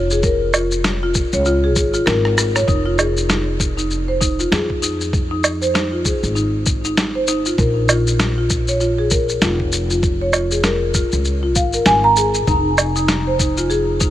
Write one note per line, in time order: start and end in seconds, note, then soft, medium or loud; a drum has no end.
0.00 1.22 F1 medium
0.11 0.23 G#4 medium
0.11 shaker soft
0.23 0.41 A#4 medium
0.23 kick loud
0.23 shaker soft
0.54 0.71 F4 medium
0.54 low woodblock medium
0.54 shaker medium
0.72 shaker soft
0.84 snare loud
0.84 shaker soft
1.03 1.32 F4 medium
1.15 kick loud
1.15 shaker medium
1.33 1.76 C#2 medium
1.33 1.45 C#5 medium
1.33 shaker soft
1.45 1.62 F4 medium
1.45 shaker soft
1.64 1.75 G#4 medium
1.76 1.97 G#1 medium
1.76 1.93 G#4 medium
1.76 kick loud
1.76 shaker medium
1.94 2.06 F4 medium
1.94 shaker soft
2.06 2.60 G#1 medium
2.06 2.24 A#4 loud
2.06 cross-stick medium
2.06 snare loud
2.06 shaker soft
2.25 cross-stick medium
2.38 cross-stick medium
2.38 shaker medium
2.55 2.67 C#5 medium
2.55 cross-stick medium
2.55 shaker soft
2.68 4.44 F1 medium
2.68 2.84 D#4 medium
2.68 kick loud
2.68 shaker soft
2.86 2.98 F4 medium
2.98 3.16 G#4 medium
2.98 low woodblock medium
2.98 shaker medium
3.17 shaker soft
3.29 3.46 D#4 medium
3.29 snare medium
3.29 shaker soft
3.60 kick loud
3.60 shaker medium
3.77 4.07 D#4 medium
3.77 shaker soft
3.91 shaker soft
4.08 4.20 C5 medium
4.21 4.37 D#4 medium
4.21 kick medium
4.21 shaker medium
4.39 4.51 F4 medium
4.39 shaker soft
4.52 6.12 F2 medium
4.52 4.69 G#4 medium
4.52 snare loud
4.52 shaker soft
4.70 kick medium
4.82 4.99 D#4 medium
4.82 shaker medium
5.01 shaker soft
5.13 kick loud
5.13 shaker soft
5.31 5.60 D#4 medium
5.44 low woodblock medium
5.44 shaker medium
5.62 5.73 C5 medium
5.62 shaker soft
5.74 5.90 D#4 medium
5.74 snare loud
5.74 shaker soft
5.92 6.04 F4 medium
6.05 6.22 G#4 medium
6.05 kick loud
6.05 shaker medium
6.23 7.50 G#1 medium
6.23 shaker soft
6.35 6.53 D#4 medium
6.35 shaker soft
6.66 kick loud
6.66 shaker medium
6.85 7.13 D#4 medium
6.85 shaker soft
6.97 snare loud
6.97 shaker soft
7.15 7.26 C5 medium
7.28 7.44 D#4 medium
7.28 shaker medium
7.46 7.58 F4 medium
7.46 shaker soft
7.58 9.34 A#1 medium
7.58 7.75 A#4 medium
7.58 kick loud
7.58 shaker soft
7.89 8.06 F4 medium
7.89 low woodblock medium
7.89 shaker medium
8.07 shaker soft
8.20 snare loud
8.20 shaker soft
8.38 8.66 F4 medium
8.50 kick medium
8.50 shaker medium
8.68 8.80 C#5 medium
8.68 shaker soft
8.80 8.97 F4 medium
8.80 shaker soft
8.98 9.11 G#4 medium
9.11 9.28 A#4 medium
9.11 kick loud
9.11 shaker medium
9.29 shaker soft
9.42 11.02 F1 medium
9.42 9.59 F4 medium
9.42 snare loud
9.42 shaker soft
9.60 kick medium
9.72 shaker medium
9.90 10.19 F4 medium
9.90 shaker soft
10.03 kick loud
10.03 shaker soft
10.21 10.33 C#5 medium
10.33 10.50 F4 medium
10.33 low woodblock medium
10.33 shaker medium
10.51 10.63 G#4 medium
10.51 shaker soft
10.64 10.81 A#4 medium
10.64 snare medium
10.64 shaker soft
10.94 11.12 F4 medium
10.94 kick loud
10.94 shaker medium
11.12 11.56 C#2 medium
11.12 shaker soft
11.25 shaker soft
11.43 11.55 F4 medium
11.55 11.77 G#1 medium
11.55 11.73 F5 medium
11.55 kick loud
11.55 shaker medium
11.73 11.85 A#4 medium
11.73 shaker soft
11.86 12.40 G#1 medium
11.86 12.03 G#5 loud
11.86 snare loud
11.86 shaker soft
12.04 12.16 A#5 loud
12.16 12.34 G#4 medium
12.16 shaker medium
12.34 shaker soft
12.47 14.10 F1 medium
12.47 12.65 D#4 medium
12.47 kick loud
12.47 shaker soft
12.78 low woodblock medium
12.78 shaker medium
12.96 13.25 D#4 medium
12.96 shaker soft
13.08 snare medium
13.08 shaker soft
13.27 13.39 C5 medium
13.39 13.56 D#4 medium
13.39 kick loud
13.39 shaker medium
13.57 13.70 F4 medium
13.57 shaker soft
13.70 13.87 G#4 medium
13.70 shaker soft
14.00 14.10 D#4 medium
14.00 kick loud
14.00 shaker medium